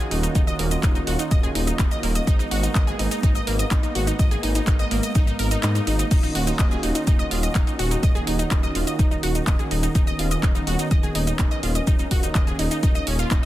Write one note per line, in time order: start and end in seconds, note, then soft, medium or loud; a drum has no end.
0.00 2.23 D#3 medium
0.00 9.91 A#3 medium
0.00 2.23 C#4 medium
0.00 2.24 F4 medium
0.00 2.24 F#4 medium
0.11 0.28 D#1 loud
0.11 0.19 D#4 medium
0.11 0.19 D#5 medium
0.11 open hi-hat loud
0.23 0.28 D#4 medium
0.23 0.28 D#5 medium
0.23 closed hi-hat soft
0.23 shaker medium
0.35 0.52 D#1 loud
0.35 0.40 D#4 loud
0.35 0.40 D#5 medium
0.35 kick loud
0.35 closed hi-hat medium
0.35 shaker medium
0.47 0.52 D#5 loud
0.47 0.52 D#6 medium
0.47 shaker soft
0.59 0.76 D#1 medium
0.59 0.67 A#3 medium
0.59 0.67 A#4 medium
0.59 open hi-hat loud
0.71 0.76 D#5 medium
0.71 0.76 D#6 medium
0.71 closed hi-hat soft
0.71 shaker medium
0.83 1.00 D#1 medium
0.83 0.91 D#4 loud
0.83 0.91 D#5 medium
0.83 kick loud
0.83 clap loud
0.83 closed hi-hat medium
0.83 shaker medium
0.95 1.00 D#4 medium
0.95 1.00 D#5 medium
0.95 shaker soft
1.07 1.16 D#1 loud
1.07 1.18 F#4 loud
1.07 1.18 F#5 medium
1.07 open hi-hat loud
1.19 1.30 D#4 medium
1.19 1.30 D#5 medium
1.19 closed hi-hat soft
1.19 shaker medium
1.31 1.48 D#1 medium
1.31 1.39 D#5 loud
1.31 1.39 D#6 medium
1.31 kick loud
1.31 closed hi-hat medium
1.31 shaker medium
1.43 1.51 G#4 medium
1.43 1.51 G#5 medium
1.43 shaker soft
1.55 1.72 D#1 medium
1.55 1.63 D#4 medium
1.55 1.63 D#5 medium
1.55 open hi-hat loud
1.67 1.72 D#4 medium
1.67 1.72 D#5 medium
1.67 closed hi-hat medium
1.67 shaker medium
1.79 1.88 D#1 medium
1.79 1.84 D#4 loud
1.79 1.84 D#5 medium
1.79 kick loud
1.79 clap loud
1.79 closed hi-hat medium
1.79 shaker medium
1.91 1.96 D#5 loud
1.91 1.96 D#6 medium
1.91 closed hi-hat soft
1.91 shaker soft
2.03 2.20 D#1 loud
2.03 2.11 A#3 medium
2.03 2.11 A#4 medium
2.03 open hi-hat loud
2.15 2.20 D#5 medium
2.15 2.20 D#6 medium
2.15 closed hi-hat soft
2.15 shaker medium
2.27 2.44 G#1 loud
2.27 6.07 G#3 medium
2.27 6.07 B3 medium
2.27 2.35 D#4 loud
2.27 2.35 D#5 medium
2.27 kick loud
2.27 closed hi-hat medium
2.27 shaker medium
2.39 2.44 D#4 medium
2.39 2.44 D#5 medium
2.39 shaker soft
2.51 2.68 G#1 medium
2.51 2.62 F#4 loud
2.51 2.62 F#5 medium
2.51 open hi-hat medium
2.63 2.74 D#4 medium
2.63 2.74 D#5 medium
2.63 closed hi-hat medium
2.63 shaker medium
2.75 2.92 G#1 medium
2.75 2.83 D#5 loud
2.75 2.83 D#6 medium
2.75 kick loud
2.75 clap loud
2.75 closed hi-hat medium
2.75 shaker medium
2.87 2.95 G#4 medium
2.87 2.95 G#5 medium
2.87 shaker soft
2.99 3.08 G#1 loud
2.99 3.07 D#4 medium
2.99 3.07 D#5 medium
2.99 open hi-hat loud
3.11 3.16 D#4 medium
3.11 3.16 D#5 medium
3.11 closed hi-hat medium
3.11 shaker medium
3.23 3.40 G#1 medium
3.23 3.28 D#4 loud
3.23 3.28 D#5 medium
3.23 kick loud
3.23 closed hi-hat medium
3.23 shaker medium
3.35 3.40 D#5 loud
3.35 3.40 D#6 medium
3.35 shaker soft
3.47 3.64 G#1 medium
3.47 3.55 A#3 medium
3.47 3.54 A#4 medium
3.47 open hi-hat loud
3.59 3.64 D#5 medium
3.59 3.64 D#6 medium
3.59 closed hi-hat medium
3.59 shaker medium
3.71 3.80 G#1 medium
3.71 3.79 D#4 loud
3.71 3.79 D#5 medium
3.71 kick loud
3.71 clap loud
3.71 closed hi-hat medium
3.71 shaker medium
3.83 3.88 D#4 medium
3.83 3.88 D#5 medium
3.83 closed hi-hat soft
3.83 shaker soft
3.95 4.12 G#1 loud
3.95 4.06 F#4 loud
3.95 4.06 F#5 medium
3.95 open hi-hat loud
4.07 4.18 D#4 medium
4.07 4.18 D#5 medium
4.07 closed hi-hat medium
4.07 shaker medium
4.19 4.36 G#1 loud
4.19 4.27 D#5 loud
4.19 4.27 D#6 medium
4.19 kick loud
4.19 closed hi-hat medium
4.19 shaker medium
4.31 4.39 G#4 medium
4.31 4.39 G#5 medium
4.31 closed hi-hat soft
4.31 shaker soft
4.43 4.60 G#1 medium
4.43 4.51 D#4 medium
4.43 4.51 D#5 medium
4.43 open hi-hat medium
4.55 4.60 D#4 medium
4.55 4.60 D#5 medium
4.55 closed hi-hat medium
4.55 shaker medium
4.67 4.84 G#1 loud
4.67 4.72 D#4 loud
4.67 4.72 D#5 medium
4.67 kick loud
4.67 clap loud
4.67 closed hi-hat medium
4.67 shaker medium
4.79 4.84 D#5 loud
4.79 4.84 D#6 medium
4.79 closed hi-hat soft
4.79 shaker soft
4.91 5.00 G#1 loud
4.91 4.99 A#3 medium
4.91 4.99 A#4 medium
4.91 open hi-hat loud
5.03 5.08 D#5 medium
5.03 5.08 D#6 medium
5.03 closed hi-hat medium
5.03 shaker medium
5.15 5.32 G#1 medium
5.15 5.23 D#4 loud
5.15 5.23 D#5 medium
5.15 kick loud
5.15 closed hi-hat medium
5.15 shaker medium
5.27 5.32 D#4 medium
5.27 5.32 D#5 medium
5.27 shaker soft
5.39 5.56 G#1 medium
5.39 5.47 A#4 loud
5.39 5.47 A#5 medium
5.39 open hi-hat loud
5.51 5.58 D#4 loud
5.51 5.58 D#5 medium
5.51 closed hi-hat medium
5.51 shaker medium
5.63 5.80 G#2 medium
5.63 5.74 D#4 loud
5.63 5.74 D#5 medium
5.63 clap loud
5.63 closed hi-hat medium
5.63 shaker medium
5.75 5.86 D#4 medium
5.75 5.86 D#5 medium
5.75 closed hi-hat soft
5.75 shaker soft
5.87 6.04 G#1 loud
5.87 5.92 D#4 medium
5.87 5.92 D#5 medium
5.87 open hi-hat loud
5.99 6.07 D#4 medium
5.99 6.07 D#5 medium
5.99 closed hi-hat medium
5.99 shaker medium
6.11 6.28 D#1 loud
6.11 13.45 D#3 medium
6.11 9.91 C#4 medium
6.11 6.19 D#4 loud
6.11 8.01 F4 medium
6.11 9.91 F#4 medium
6.11 6.19 D#5 medium
6.11 kick loud
6.11 closed hi-hat medium
6.11 crash medium
6.11 shaker medium
6.23 6.28 D#4 medium
6.23 6.28 D#5 medium
6.23 shaker soft
6.35 6.52 D#1 medium
6.35 6.46 F#4 loud
6.35 6.46 F#5 medium
6.35 open hi-hat loud
6.47 6.58 D#4 medium
6.47 6.58 D#5 medium
6.47 closed hi-hat medium
6.47 shaker medium
6.59 6.76 D#1 medium
6.59 6.67 D#5 loud
6.59 6.67 D#6 medium
6.59 kick loud
6.59 clap loud
6.59 closed hi-hat medium
6.59 shaker medium
6.71 6.78 G#4 medium
6.71 6.79 G#5 medium
6.71 shaker soft
6.83 6.92 D#1 loud
6.83 6.90 D#4 medium
6.83 6.91 D#5 medium
6.83 open hi-hat loud
6.95 7.00 D#4 medium
6.95 7.00 D#5 medium
6.95 closed hi-hat medium
6.95 shaker medium
7.07 7.24 D#1 medium
7.07 7.12 D#4 loud
7.07 7.12 D#5 medium
7.07 kick loud
7.07 closed hi-hat medium
7.07 shaker medium
7.19 7.24 D#5 loud
7.19 7.24 D#6 medium
7.19 shaker soft
7.31 7.48 D#1 medium
7.31 7.36 F4 medium
7.31 7.36 F5 medium
7.31 open hi-hat loud
7.43 7.48 D#5 medium
7.43 7.48 D#6 medium
7.43 closed hi-hat medium
7.43 shaker medium
7.55 7.64 D#1 medium
7.55 7.62 D#4 loud
7.55 7.62 D#5 medium
7.55 kick loud
7.55 clap loud
7.55 closed hi-hat medium
7.55 shaker medium
7.67 7.72 D#4 medium
7.67 7.72 D#5 medium
7.67 closed hi-hat soft
7.67 shaker soft
7.79 7.96 D#1 loud
7.79 7.90 F#4 loud
7.79 7.90 F#5 medium
7.79 open hi-hat loud
7.91 8.02 D#4 medium
7.91 8.02 D#5 medium
7.91 closed hi-hat medium
7.91 shaker medium
8.03 8.20 D#1 loud
8.03 9.93 D#4 medium
8.03 8.10 D#5 loud
8.03 8.10 D#6 medium
8.03 kick loud
8.03 closed hi-hat medium
8.03 shaker medium
8.15 8.22 G#4 medium
8.15 8.22 G#5 medium
8.15 shaker soft
8.27 8.44 D#1 medium
8.27 8.34 D#4 medium
8.27 8.34 D#5 medium
8.27 open hi-hat loud
8.39 8.44 D#4 medium
8.39 8.44 D#5 medium
8.39 closed hi-hat medium
8.39 shaker medium
8.51 8.68 D#1 medium
8.51 8.56 D#4 loud
8.51 8.56 D#5 medium
8.51 kick loud
8.51 clap loud
8.51 closed hi-hat medium
8.51 shaker medium
8.63 8.68 D#5 loud
8.63 8.68 D#6 medium
8.63 shaker soft
8.75 8.84 D#1 loud
8.75 8.80 F4 medium
8.75 8.80 F5 medium
8.75 open hi-hat loud
8.87 8.92 D#5 medium
8.87 8.92 D#6 medium
8.87 closed hi-hat medium
8.87 shaker medium
8.99 9.16 D#1 medium
8.99 9.07 D#4 loud
8.99 9.06 D#5 medium
8.99 kick loud
8.99 closed hi-hat medium
8.99 shaker medium
9.11 9.16 D#4 medium
9.11 9.16 D#5 medium
9.11 shaker soft
9.23 9.40 D#1 medium
9.23 9.34 F#4 loud
9.23 9.34 F#5 medium
9.23 open hi-hat loud
9.35 9.46 D#4 medium
9.35 9.46 D#5 medium
9.35 closed hi-hat medium
9.35 shaker medium
9.47 9.56 D#1 medium
9.47 9.54 D#5 loud
9.47 9.55 D#6 medium
9.47 kick loud
9.47 clap loud
9.47 closed hi-hat medium
9.47 shaker medium
9.59 9.67 G#4 medium
9.59 9.66 G#5 medium
9.59 closed hi-hat soft
9.59 shaker soft
9.71 9.88 D#1 loud
9.71 9.79 D#4 medium
9.71 9.79 D#5 medium
9.71 open hi-hat loud
9.83 9.88 D#4 medium
9.83 9.88 D#5 medium
9.83 closed hi-hat medium
9.83 shaker medium
9.95 10.12 D#1 loud
9.95 11.85 B3 medium
9.95 13.45 C#4 medium
9.95 10.00 D#4 loud
9.95 10.00 D#5 medium
9.95 kick loud
9.95 closed hi-hat medium
9.95 shaker medium
10.07 10.12 D#5 loud
10.07 10.12 D#6 medium
10.07 shaker soft
10.19 10.36 D#1 medium
10.19 10.24 F4 medium
10.19 10.24 F5 medium
10.19 open hi-hat loud
10.31 10.36 D#5 medium
10.31 10.36 D#6 medium
10.31 closed hi-hat soft
10.31 shaker medium
10.43 10.60 D#1 medium
10.43 10.51 D#4 loud
10.43 10.51 D#5 medium
10.43 kick loud
10.43 clap loud
10.43 closed hi-hat medium
10.43 shaker soft
10.55 10.60 D#4 medium
10.55 10.60 D#5 medium
10.55 shaker soft
10.67 10.76 D#1 loud
10.67 10.78 F#4 loud
10.67 10.78 F#5 medium
10.67 open hi-hat loud
10.79 10.90 D#4 medium
10.79 10.90 D#5 medium
10.79 closed hi-hat medium
10.79 shaker medium
10.91 11.08 D#1 medium
10.91 10.99 D#5 loud
10.91 10.99 D#6 medium
10.91 kick loud
10.91 closed hi-hat medium
10.91 shaker medium
11.03 11.11 G#4 medium
11.03 11.11 G#5 medium
11.03 shaker soft
11.15 11.32 D#1 medium
11.15 11.23 D#4 medium
11.15 11.23 D#5 medium
11.15 open hi-hat loud
11.27 11.32 D#4 medium
11.27 11.32 D#5 medium
11.27 closed hi-hat medium
11.27 shaker medium
11.39 11.48 D#1 medium
11.39 11.44 D#4 loud
11.39 11.44 D#5 medium
11.39 kick loud
11.39 clap loud
11.39 closed hi-hat medium
11.39 shaker medium
11.51 11.56 D#5 loud
11.51 11.56 D#6 medium
11.51 closed hi-hat soft
11.51 shaker soft
11.63 11.80 D#1 loud
11.63 11.68 F4 medium
11.63 11.68 F5 medium
11.63 open hi-hat loud
11.75 11.80 D#5 medium
11.75 11.80 D#6 medium
11.75 closed hi-hat soft
11.75 shaker medium
11.87 12.04 D#1 loud
11.87 13.45 A#3 medium
11.87 11.95 D#4 loud
11.87 11.95 D#5 medium
11.87 kick loud
11.87 closed hi-hat medium
11.87 shaker medium
11.99 12.04 D#4 medium
11.99 12.04 D#5 medium
11.99 shaker soft
12.11 12.28 D#1 medium
12.11 12.22 F#4 loud
12.11 12.22 F#5 medium
12.11 kick medium
12.11 open hi-hat loud
12.23 12.34 D#4 medium
12.23 12.34 D#5 medium
12.23 closed hi-hat soft
12.23 shaker medium
12.35 12.52 D#1 loud
12.35 12.43 D#5 loud
12.35 12.43 D#6 medium
12.35 kick loud
12.35 clap loud
12.35 closed hi-hat medium
12.35 shaker medium
12.47 12.55 G#4 medium
12.47 12.55 G#5 medium
12.47 closed hi-hat soft
12.47 shaker soft
12.59 12.68 D#1 loud
12.59 12.67 D#4 medium
12.59 12.67 D#5 medium
12.59 open hi-hat loud
12.71 12.76 D#4 medium
12.71 12.76 D#5 medium
12.71 closed hi-hat soft
12.71 shaker medium
12.83 13.00 D#1 medium
12.83 12.88 D#4 loud
12.83 12.88 D#5 medium
12.83 kick loud
12.83 closed hi-hat medium
12.83 shaker medium
12.95 13.00 D#5 loud
12.95 13.00 D#6 medium
12.95 shaker soft
13.07 13.24 D#1 medium
13.07 13.18 C#4 medium
13.07 13.18 C#5 medium
13.07 open hi-hat loud
13.19 13.30 F4 loud
13.19 13.30 F5 medium
13.19 closed hi-hat medium
13.19 shaker medium
13.31 13.40 D#1 loud
13.31 13.42 D#4 loud
13.31 13.42 D#5 medium
13.31 kick loud
13.31 clap loud
13.31 closed hi-hat medium
13.31 shaker medium